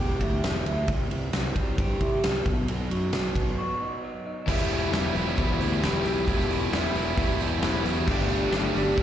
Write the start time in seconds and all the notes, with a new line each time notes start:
Already playing: E2 B2 E3 G3
0.00 E1 G4
0.20 D2 E4, kick, ride
0.42 E1 E3, snare, ride
0.65 D2 E4, ride
0.88 C2 C3, kick, ride
1.10 C2 E3, ride
1.32 C2 E3, snare, ride
1.55 C2 G3, kick, ride
1.78 G2 G4, kick, ride
2.00 C2 E4, kick, ride
2.23 C2 E3, snare, ride
2.45 B1 B2, kick, ride
2.68 B1 B2, ride
2.90 F#2 F#3, ride
3.13 B1 F#3, snare, ride
3.35 B1 B3, kick, ride
3.58 F#4
3.82 D#4
4.04 F#3
4.26 D#4
4.46 E1 E2 B2 E3 G3 B3 E4 G4 B4, kick, crash
4.70 B3 E4 G4, open hi-hat
4.91 E1 E3 G3 B3 E4 G4 B4, snare, open hi-hat
4.95 E4
5.14 E1 E3 G3 B3 E4 G4 B4, open hi-hat
5.36 E1 E2 B2 E3 G3 B3 E4 G4 B4, kick, open hi-hat
5.60 D2 B3 E4 G4, open hi-hat
5.81 E1 E3 G3 B3 E4 G4 B4, snare, open hi-hat
6.03 B1 E3 G3 E4 G4 B4, open hi-hat
6.26 E1 E2 B2 E3 G3 B3 E4 G4, kick, open hi-hat
6.30 B4
6.40 snare
6.50 E1 E4 G4, open hi-hat
6.54 B3
6.71 E1 E3 G3 B3 E4 G4 B4, snare, open hi-hat
6.93 E1 G3 E4 G4 B4, open hi-hat
6.97 E3 B3
7.16 E1 E2 B2 E3 G3 B3 E4 G4 B4, kick, open hi-hat
7.40 B3 E4 G4, open hi-hat
7.61 E1 E3 G3 B3 E4 G4 B4, snare, open hi-hat
7.84 E2 E3 G3 E4 F#4 G4 B4, open hi-hat
8.06 G1 G3 A3 D4 G4, kick, crash
8.30 A3 D4 G4, open hi-hat
8.51 G1 G3 A3 D4 G4, snare, open hi-hat
8.55 G4
8.73 G1 A3 D4 G4, open hi-hat
8.77 A3 D4
8.96 G1 G3 A3 D4 G4, kick, open hi-hat